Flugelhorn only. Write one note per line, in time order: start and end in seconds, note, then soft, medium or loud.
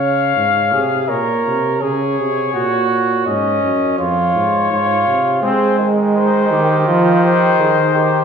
0.00 0.68 C#5 medium
0.72 1.07 G#4 medium
1.08 1.83 A#4 medium
1.81 2.54 G#4 loud
2.54 3.25 F#4 medium
3.27 3.97 C#4 medium
3.98 4.69 F4 loud
4.71 5.44 F4 loud
5.43 5.90 G#4 medium
6.15 6.49 D#4 medium
6.51 6.88 G4 medium
6.87 7.22 F4 medium
7.22 7.58 G4 medium
7.59 7.94 G#4 medium
7.94 8.24 G4 medium